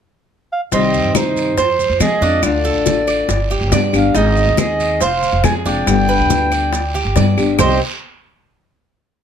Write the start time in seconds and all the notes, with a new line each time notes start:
0.52 F5
0.72 C2 C3 D#3 G3 C4 G4 D#5, high bongo, high conga, long guiro, maracas
0.94 high conga, maracas
1.04 G2
1.15 D#4 C5, high bongo, high conga, short guiro, claves, maracas
1.36 high conga, short guiro, maracas
1.57 F2 C5, muted nylon-string guitar stroke, high bongo, high conga, long guiro, maracas
1.79 high conga, maracas
1.90 F2
2.00 F3 G#3 C4 F4 G#4 D#5, high bongo, low bongo, high conga, short guiro, claves, maracas
2.21 F2 F3 G#3 C4 D4 F4, high conga, short guiro, maracas
2.42 D2 D3 A3 D4 F4 D5, high bongo, high conga, long guiro, claves, maracas
2.65 A4, high conga, maracas
2.75 A1
2.86 high bongo, high conga, short guiro, maracas
3.07 D5, high bongo, high conga, short guiro, claves, maracas
3.29 G1, muted nylon-string guitar stroke, high bongo, high conga, long guiro, maracas
3.50 G4, high bongo, high conga, maracas
3.61 G1
3.72 G2 G3 B3 D4 G4 D5, high bongo, low bongo, high conga, short guiro, maracas
3.93 G1 G3 B3 D4 G4 F5, high bongo, short guiro, claves, maracas
4.14 G#1 D#3 G#3 C4 D#4 G#4 D#5, high bongo, high conga, long guiro, maracas
4.37 high conga, maracas
4.47 D#2
4.57 G#4 D#5, high bongo, high conga, short guiro, claves, maracas
4.80 high conga, short guiro, maracas
5.01 F1 C5 F5, muted nylon-string guitar stroke, high bongo, high conga, long guiro, maracas
5.23 high conga, maracas
5.33 F1
5.44 F2 F3 G#3 C4 F4 G#4 G#5, high bongo, low bongo, high conga, short guiro, claves, maracas
5.65 F1 F3 G#3 C4 D4 F4 G5, high conga, short guiro, maracas
5.86 G1 D3 G3 B3 D4 G4, high bongo, high conga, long guiro, claves, maracas
6.09 B4, high conga, maracas
6.19 D2
6.30 high bongo, high conga, short guiro, maracas
6.51 D5, high bongo, high conga, short guiro, claves, maracas
6.73 muted nylon-string guitar stroke, high bongo, high conga, long guiro, maracas
6.94 G4, high bongo, high conga, maracas
7.05 G1
7.16 G2 G3 B3 D4 G4 D5, high bongo, low bongo, high conga, short guiro, maracas
7.37 G1 G3 B3 D4 G4, high bongo, short guiro, claves, maracas
7.59 C2 C3 D#3 G3 C4 G4 C5 D#5, low bongo, low conga, long guiro, claves, maracas